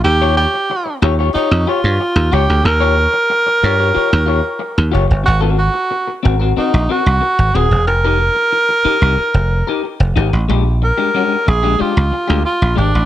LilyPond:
<<
  \new Staff \with { instrumentName = "Clean electric guitar" } { \time 4/4 \key ees \major \tempo 4 = 92 r16 <f' g' des''>16 r4 <f' g' des''>16 <f' g' des''>16 <f' g' des''>16 r16 <f' g' des''>16 r8. <f' g' des''>16 r16 | r16 <f' g' des''>16 r4 <f' g' des''>16 <f' g' des''>16 <f' g' des''>16 r16 <f' g' des''>16 r8. <f' g' des''>16 r16 | r16 <c' ges' bes'>16 r4 <c' ges' bes'>16 <c' ges' bes'>16 <c' ges' bes'>16 r16 <c' ges' bes'>16 r8. <c' ges' bes'>16 r16 | r16 <ees' g' bes'>16 r4 <ees' g' bes'>16 <ees' g' bes'>16 r8. <ees' g' bes'>16 r8 <ees' g' bes'>16 r16 |
<aes d' g'>16 r8 <aes d' g'>16 <aes d' g'>16 r8 <aes d' g'>16 <aes d' g'>16 r8 <aes d' g'>16 r8 <aes d' g'>16 r16 | }
  \new Staff \with { instrumentName = "Tenor saxophone" } { \time 4/4 \key ees \major g'8 g'4 r8 ees'8 f'4 g'8 | bes'2.~ bes'8 r8 | ges'8 ges'4 r8 ees'8 ges'4 aes'8 | bes'2.~ bes'8 r8 |
r8 bes'4 aes'8 f'4 f'8 d'8 | }
  \new Staff \with { instrumentName = "Slap bass" } { \clef bass \time 4/4 \key ees \major ees,8. r8. ees,8 r16 f,16 r16 g,16 r16 ees,16 des,16 d,16 | ees,8. r8. g,8 r16 ees,8 r8 ees,16 ges,,16 g,,16 | aes,,8. r8. aes,,8 r16 bes,,16 r16 c,16 r16 aes,,16 ees,,16 e,,16 | f,,8. r4 c,16 r16 f,,8 r8 f,,16 aes,,16 a,,16 |
bes,,8. r8. bes,,8 r16 des,16 r16 d,16 r16 bes,,16 aes,,16 a,,16 | }
>>